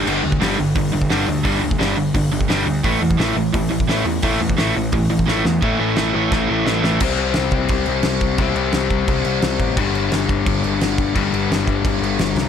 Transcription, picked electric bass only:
X:1
M:4/4
L:1/8
Q:1/4=173
K:Am
V:1 name="Picked electric bass" clef=bass
G,,, D,, G,,, G,,, G,,, G,,, G,,, D,, | G,,, D,, G,,, G,,, G,,, G,,, G,,, D,, | A,,, E,, A,,, A,,, A,,, A,,, A,,, E,, | A,,, E,, A,,, A,,, A,,, A,,, A,,, E,, |
A,,, A,,, A,,, A,,, A,,, A,,, A,,, A,,, | [K:Cmix] C,,2 C,, C,, C,, C,, C,,2 | C,, C,, C,,2 C,, C,, C,, A,,, | G,,,2 G,,, G,,, G,,, G,,, G,,,2 |
G,,, G,,, G,,,2 G,,, G,,, G,,, C,, |]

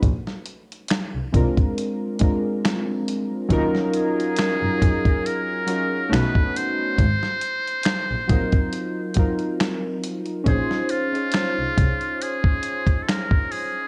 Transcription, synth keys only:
X:1
M:4/4
L:1/16
Q:"Swing 16ths" 1/4=69
K:Bbm
V:1 name="Synth keys"
z6 [A,C=DFB]3 z [A,CDFB]4- [A,CDFB] z | [G,DEFB]4- [G,DEFB] z [G,DEFA]3 z [G,DEFB]2 [=A,_CDEG]3 z | z6 [G,CEFB]3 z [G,CEFB]4- [G,CEFB] z | [DEFAc]3 [DEFAd]6- [DEFAd] z6 |]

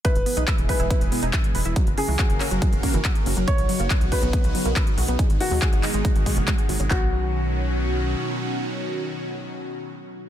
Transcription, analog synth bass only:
X:1
M:4/4
L:1/16
Q:1/4=140
K:B
V:1 name="Analog synth bass" clef=bass
z E,,, z B,,, z E,,, z E,,, z E,,, z E,,, z2 E,,, E,,, | z F,,, z C,, z F,,, z F,,, z F,,, z F,,, z2 F,,, F,,, | z B,,, z F,,, z B,,, z B,,, z B,,, z B,,, z2 B,,, B,,, | z G,,, z D,, z G,,, z G,,, z G,,, z F,,, z2 G,,, G,,, |
B,,,12 z4 | z16 |]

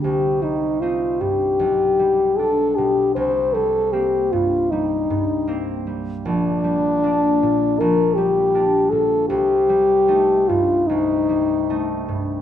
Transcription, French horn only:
X:1
M:4/4
L:1/8
Q:1/4=77
K:Gm
V:1 name="French horn"
G E F G3 A G | c A G F E3 z | D4 B G2 A | G3 F E3 z |]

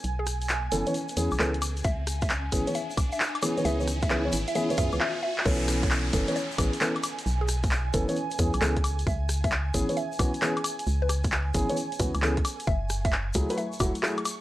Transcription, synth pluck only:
X:1
M:4/4
L:1/16
Q:"Swing 16ths" 1/4=133
K:Bdor
V:1 name="Synth pluck"
z G z8 z2 G2 z2 | e2 z e z4 e2 z e z4 | e2 z e e2 z e e2 e2 e2 e2 | c2 z c z4 c2 z6 |
z G z8 z2 G2 z2 | e2 z e z4 e2 z6 | z B z8 z2 A2 z2 | e2 z e z4 e2 z6 |]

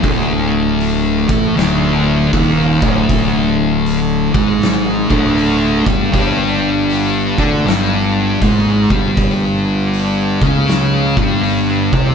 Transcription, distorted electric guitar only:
X:1
M:4/4
L:1/8
Q:"Swing" 1/4=79
K:Gm
V:1 name="Distorted electric guitar" clef=bass
[D,,D,]3 [A,,A,] [D,,D,]2 [E,,E,] [D,,D,]- | [D,,D,]3 [^G,,^G,]2 [D,,D,]2 [=G,,=G,] | [G,,G,]3 [D,D] [G,,G,]2 [^G,,^G,] [=G,,=G,]- | [G,,G,]3 [^C,^C]2 [G,,G,]2 [=C,=C] |]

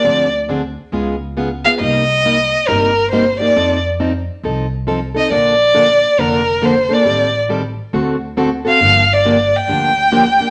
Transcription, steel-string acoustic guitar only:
X:1
M:4/4
L:1/8
Q:"Swing" 1/4=137
K:Gm
V:1 name="Steel-string acoustic guitar"
[D,F,CD_A] z [D,F,CDA] z [^C,^G,=B,^E^G] z [C,G,B,EG] [B,EG] | [C,G,B,EG] z [C,G,B,EG] z [C,G,B,EG] z [C,G,B,EG] [B,EG] | [F,CEA] z [F,CEA] z [F,CEA] z [F,CEA] [CEA] | [D,F,B,DA] z [D,F,B,DA] z [D,F,B,DA] z [D,F,B,DA] [B,DA] |
[E,G,CGA] z [E,G,CGA] z [D,A,C^FA] z [D,A,CFA] [CFA] | [D,F,B,DG] z [D,F,B,DG] z [D,F,B,DG] z [D,F,B,DG] [B,DG] |]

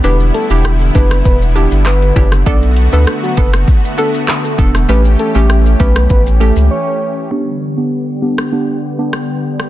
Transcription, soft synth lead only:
X:1
M:4/4
L:1/16
Q:1/4=99
K:Glyd
V:1 name="Soft synth lead"
B z A G2 z B2 B z G z B3 z | d z2 B z F B z3 A z4 z | B z A G2 z B2 B z A z c3 z | z16 |]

